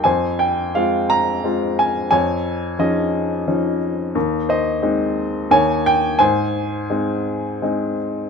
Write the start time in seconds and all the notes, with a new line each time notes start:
0.04 F2 C5 G#5
0.39 G5
0.75 G#3 C4 F4 F5
1.10 A#5
1.44 G#3 C4 F4
1.79 G#5
2.11 F2 C#5 G#5
2.79 F3 C#4 D#4 G#4 D#5
3.47 F3 C#4 D#4
4.15 D#2
4.49 C5 D#5
4.82 G#3 C4 D#4
5.51 D#2 C#5 G#5
5.86 G5
6.19 G#2 C5 G#5
6.90 G#3 C4 D#4
7.62 G#3 C4 D#4